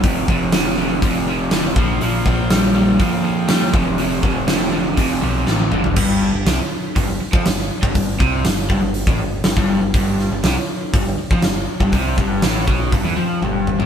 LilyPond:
<<
  \new Staff \with { instrumentName = "Overdriven electric guitar" } { \clef bass \time 4/4 \key f \lydian \tempo 4 = 121 <f, c>8 <f, c>8 <f, d>8 <f, d>8 <f, c>8 <f, c>8 <f, d>8 <bes, f>8 | <bes, f>8 <bes, f>8 <bes, g>8 <bes, g>8 <bes, f>8 <bes, f>8 <bes, g>8 <f, c>8 | <f, c>8 <f, c>8 <f, d>8 <f, d>8 <f, c>8 <f, c>8 <f, d>8 <f, d>8 | g,8. g,16 c16 r8. g,16 g,16 r16 f16 g,8 r16 g,16 |
g,8 c8 g,8 g,16 g,8 a,16 g,8 g,16 g,8 g,16 | g,8. g,16 c16 r8. g,16 g,16 r16 f16 g,8 r16 g,16 | c8 g,8 a,8 b,8 g,16 e16 f8 g,8. a,16 | }
  \new Staff \with { instrumentName = "Picked electric bass" } { \clef bass \time 4/4 \key f \lydian f,,8 f,,4. f,,4. bes,,8 | bes,,8 bes,,4. f,4. f,,8~ | f,,8 f,,4. f,,8 b,,8 a,,8 g,,8 | g,,8. g,,16 c,16 r8. g,,16 g,,16 r16 f,16 g,,8 r16 g,,16 |
g,,8 c,8 g,,8 g,,16 g,,8 a,,16 g,,8 g,,16 g,,8 g,,16 | g,,8. g,,16 c,16 r8. g,,16 g,,16 r16 f,16 g,,8 r16 g,,16 | c,8 g,,8 a,,8 b,,8 g,,16 e,16 f,8 g,,8. a,,16 | }
  \new DrumStaff \with { instrumentName = "Drums" } \drummode { \time 4/4 <hho bd>8 bd8 <hho sn>4 <hho bd>4 <hho sn>8 bd8 | hho8 bd8 <hho sn>4 <hho bd>4 <hho sn>8 bd8 | hho8 bd8 <hho sn>4 <hho bd>4 sn8 toml16 tomfh16 | <cymc bd>4 <hho sn>4 <hho bd>8. bd16 <hho sn>8. bd16 |
<hho bd>8 bd8 <hho sn>8 bd8 hho16 bd8. <hho sn>16 bd8. | <hho bd>8 sn8 <hho sn>4 <hho bd>8. bd16 <hho sn>8. bd16 | <hho bd>8 bd8 <hho sn>8 bd8 <hho bd>4 tommh8 toml16 tomfh16 | }
>>